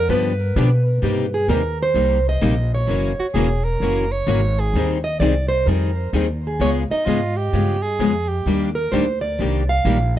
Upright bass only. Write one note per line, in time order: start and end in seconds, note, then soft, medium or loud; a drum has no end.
0.09 0.55 G2 medium
0.56 1.01 B2 loud
1.02 1.48 G2 medium
1.48 1.94 D#2 medium
1.94 2.40 C2 medium
2.42 2.87 A#1 medium
2.88 3.16 F#1 medium
3.18 muted upright bass stroke soft
3.34 3.79 E1 medium
3.80 4.26 F#1 medium
4.27 4.72 G#1 medium
4.74 5.19 D#2 medium
5.20 5.65 C2 medium
5.67 6.12 F2 medium
6.13 6.58 D#2 medium
6.60 6.88 C#2 medium
6.90 muted upright bass stroke soft
7.06 7.52 G#2 medium
7.53 7.98 G2 medium
7.99 8.44 F2 medium
8.46 8.91 D#2 medium
8.92 9.37 D2 medium
9.39 9.84 C2 medium
9.85 10.19 A#1 loud